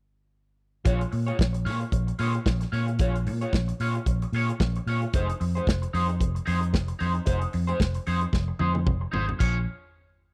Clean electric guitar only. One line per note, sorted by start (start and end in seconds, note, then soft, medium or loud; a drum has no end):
0.85 1.01 F4 loud
0.85 1.01 G#4 medium
0.85 1.00 C#5 loud
1.01 muted clean electric guitar stroke soft
1.12 muted clean electric guitar stroke soft
1.26 1.37 F4 medium
1.26 1.38 G#4 medium
1.26 1.37 C#5 medium
1.39 muted clean electric guitar stroke soft
1.53 muted clean electric guitar stroke soft
1.65 1.82 F4 medium
1.65 1.80 G#4 medium
1.65 1.79 C#5 medium
1.80 muted clean electric guitar stroke medium
1.93 muted clean electric guitar stroke soft
2.07 muted clean electric guitar stroke soft
2.19 2.35 F4 medium
2.19 2.34 G#4 medium
2.19 2.33 C#5 loud
2.34 muted clean electric guitar stroke soft
2.46 muted clean electric guitar stroke soft
2.61 muted clean electric guitar stroke soft
2.72 2.89 F4 medium
2.72 2.88 G#4 medium
2.72 2.86 C#5 medium
2.87 muted clean electric guitar stroke soft
2.99 3.16 F4 medium
2.99 3.14 G#4 medium
2.99 3.13 C#5 medium
3.14 muted clean electric guitar stroke soft
3.27 muted clean electric guitar stroke soft
3.41 3.52 F4 medium
3.41 3.52 G#4 medium
3.41 3.52 C#5 medium
3.53 muted clean electric guitar stroke soft
3.68 muted clean electric guitar stroke medium
3.81 3.97 F4 medium
3.81 3.95 G#4 medium
3.81 3.94 C#5 medium
3.96 muted clean electric guitar stroke soft
4.08 muted clean electric guitar stroke soft
4.22 muted clean electric guitar stroke soft
4.34 4.50 F4 medium
4.34 4.50 G#4 medium
4.34 4.49 C#5 medium
4.50 muted clean electric guitar stroke soft
4.61 muted clean electric guitar stroke soft
4.77 muted clean electric guitar stroke medium
4.87 5.03 F4 medium
4.87 5.02 G#4 medium
4.87 5.01 C#5 medium
5.02 muted clean electric guitar stroke soft
5.14 5.30 D#4 medium
5.14 5.29 G#4 medium
5.14 5.27 C5 loud
5.29 muted clean electric guitar stroke soft
5.40 muted clean electric guitar stroke soft
5.55 5.66 D#4 soft
5.55 5.66 G#4 medium
5.55 5.65 C5 medium
5.67 muted clean electric guitar stroke soft
5.82 muted clean electric guitar stroke soft
5.93 6.10 D#4 medium
5.93 6.09 G#4 medium
5.93 6.08 C5 medium
6.09 muted clean electric guitar stroke soft
6.20 muted clean electric guitar stroke soft
6.35 muted clean electric guitar stroke soft
6.46 6.63 D#4 medium
6.46 6.60 G#4 medium
6.46 6.59 C5 medium
6.61 muted clean electric guitar stroke soft
6.73 muted clean electric guitar stroke soft
6.88 muted clean electric guitar stroke medium
6.99 7.16 D#4 medium
6.99 7.14 G#4 medium
6.99 7.13 C5 medium
7.14 muted clean electric guitar stroke soft
7.26 7.42 D#4 medium
7.26 7.41 G#4 medium
7.26 7.40 C5 loud
7.41 muted clean electric guitar stroke medium
7.53 muted clean electric guitar stroke soft
7.67 7.78 D#4 medium
7.67 7.79 G#4 medium
7.67 7.78 C5 medium
7.80 muted clean electric guitar stroke soft
7.95 muted clean electric guitar stroke soft
8.07 8.23 D#4 medium
8.07 8.21 G#4 medium
8.07 8.20 C5 medium
8.21 muted clean electric guitar stroke medium
8.33 muted clean electric guitar stroke soft
8.48 muted clean electric guitar stroke soft
8.59 8.76 D#4 medium
8.59 8.74 G#4 medium
8.59 8.73 C5 medium
8.74 muted clean electric guitar stroke soft
8.86 muted clean electric guitar stroke soft
9.01 muted clean electric guitar stroke soft
9.12 9.29 D#4 medium
9.12 9.27 G#4 medium
9.12 9.26 C5 medium
9.27 muted clean electric guitar stroke soft
9.39 9.57 F4 medium
9.39 9.57 G#4 medium
9.39 9.57 C#5 loud